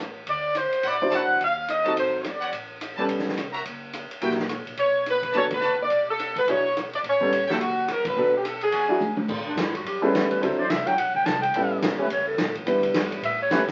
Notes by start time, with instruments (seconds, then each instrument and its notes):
Already playing: upright bass A1
0.26 upright bass D2, saxophone section D5, ride
0.55 saxophone section C5, hi-hat pedal, ride
0.72 muted upright bass stroke, ride
0.83 upright bass A2, trumpet section E4 C5 D5 F#5, ride
0.87 saxophone section D5
1.01 upright piano F#3 D4 E4 C5
1.11 trumpet section E4 C5 D5 A5, cross-stick, hi-hat pedal, ride
1.15 saxophone section F#5
1.21 upright bass F#2
1.31 upright bass D2
1.40 upright bass D#2, ride
1.44 saxophone section F5
1.68 saxophone section D#5, hi-hat pedal, ride
1.84 upright piano F#3 C4 D#4 A4, trumpet section F#4 C5 D#5 A5, ride
1.95 upright bass A1, saxophone section C5, ride
2.21 upright bass E2, saxophone section C#5, cross-stick, hi-hat pedal, ride
2.28 saxophone section D5
2.40 trumpet section G4 B4 C#5 F#5, ride
2.52 upright bass A1, ride
2.81 hi-hat pedal, ride
2.97 upright bass G#1, upright piano G3 B3 C#4 A4, trumpet section G4 B4 C#5 A5
3.08 upright bass E1, ride
3.19 snare
3.28 snare
3.37 upright bass F1, cross-stick, hi-hat pedal, ride
3.53 trumpet section F#4 A#4 E5 A#5, ride
3.65 upright bass F#1, ride
3.93 hi-hat pedal, ride
4.11 ride
4.21 upright bass A#1, upright piano F#3 A#3 E4 G4, trumpet section F#4 A#4 E5 G5, ride
4.30 snare
4.39 snare
4.49 cross-stick, hi-hat pedal, ride
4.66 upright bass A#1, ride
4.77 upright bass B1, saxophone section C#5, ride
5.06 hi-hat pedal, ride
5.10 saxophone section B4
5.22 kick, ride
5.32 upright bass F#1, upright piano F#3 B3 D4 A4, trumpet section F#4 B4 D5 A5, ride
5.37 saxophone section C#5
5.50 saxophone section B4, kick, ride
5.61 trumpet section F#4 B4 D5 A5, hi-hat pedal
5.79 upright bass F#1, saxophone section D5
5.90 upright bass E1, ride
6.11 saxophone section A4
6.19 hi-hat pedal, ride
6.36 saxophone section B4, kick, ride
6.47 upright bass B1, upright piano F#3 D4 E4 G#4, saxophone section C#5, ride
6.76 cross-stick, hi-hat pedal, ride
6.93 saxophone section D5, ride
7.03 upright bass A1, ride
7.09 saxophone section C#5
7.20 upright piano G3 B3 C#4 A4, kick
7.33 hi-hat pedal, ride
7.48 upright bass G1, upright piano F#3 A#3 E4 G4, trumpet section F#4 A#4 E5 G5, saxophone section A4, snare
7.59 upright bass F#1, saxophone section F#4, ride
7.88 upright bass F#2, cross-stick, hi-hat pedal, ride
7.92 saxophone section A#4
8.05 saxophone section B4, kick, ride
8.15 upright bass B1, upright piano F#3 B3 D4 A4
8.37 saxophone section G4
8.45 saxophone section A4, hi-hat pedal, ride
8.61 saxophone section G#4, ride
8.71 upright bass E2, trumpet section F#4 D5 E5 G#5, ride
8.88 upright piano F#3 D4 E4 F#4
9.00 hi-hat pedal, high tom
9.17 muted upright bass stroke, high tom
9.28 upright bass A2, kick, crash
9.47 clarinet D4
9.55 upright bass G2, snare, hi-hat pedal, ride
9.60 clarinet E4
9.75 clarinet F#4, ride
9.84 upright bass F#2, clarinet G4, ride
10.02 upright piano G3 B3 C#4 E4 A4, trombone section A3 C#4 G4 B4, clarinet G#4
10.12 upright bass E2, clarinet A4, snare, hi-hat pedal, ride
10.30 clarinet B4, muted upright bass stroke, ride
10.41 upright bass D2, upright piano F#3 C4 D4 E4 A4, clarinet C5, ride
10.58 trombone section F#3 D4 E4 C5, clarinet D5
10.69 upright bass C2, clarinet E5, snare, hi-hat pedal, ride
10.85 trombone section F#3 D4 E4 F#4, clarinet G5, muted upright bass stroke, ride
10.97 upright bass B1, clarinet F#5, ride
11.15 clarinet G5, kick
11.25 upright bass C2, clarinet A5, snare, hi-hat pedal, ride
11.42 clarinet G5, ride
11.54 upright bass A1, upright piano G3 B3 C#4 E4 A4, ride
11.81 upright bass B1, snare, hi-hat pedal, ride
11.98 trombone section A3 C#4 G4 B4, muted upright bass stroke
12.10 upright bass C#2, clarinet C#5, ride
12.27 clarinet A4
12.37 upright bass B1, snare, hi-hat pedal, ride
12.47 upright bass A1
12.55 upright bass G1, ride
12.66 upright bass E2, upright piano G3 B3 D4 E4 B4, ride
12.76 upright bass D2
12.83 upright bass B1, ride
12.94 upright bass G2, snare, hi-hat pedal, ride
13.12 ride
13.22 upright bass A2, clarinet E5, ride
13.42 clarinet C#5
13.50 upright bass E2, trombone section A3 C#4 G4 B4, snare, hi-hat pedal, ride
13.67 muted upright bass stroke, snare, ride